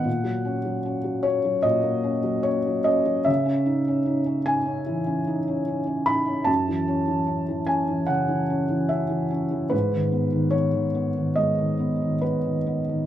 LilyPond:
<<
  \new Staff \with { instrumentName = "Felt piano" } { \time 4/4 \key fis \dorian \tempo 4 = 74 fis''4. cis''8 dis''4 cis''8 dis''8 | e''4. gis''2 b''8 | a''4. gis''8 fis''4 e''8 r8 | b'4 cis''4 dis''4 b'4 | }
  \new Staff \with { instrumentName = "Felt piano" } { \time 4/4 \key fis \dorian ais,16 fis16 cis'16 fis16 cis'16 fis16 cis'16 fis16 ais,16 ais16 cis'16 fis16 cis'16 fis16 cis'16 fis16 | cis16 cis'16 dis'16 cis'16 dis'16 cis'16 dis'16 cis'16 e16 cis'16 dis'16 cis'16 dis'16 cis'16 dis'16 cis'16 | fis,16 e16 cis'16 e16 cis'16 e16 cis'16 e16 cis16 e16 cis'16 e16 cis'16 e16 cis'16 e16 | gis,16 dis16 b16 dis16 b16 dis16 b16 dis16 gis16 dis16 b16 dis16 b16 dis16 b16 dis16 | }
>>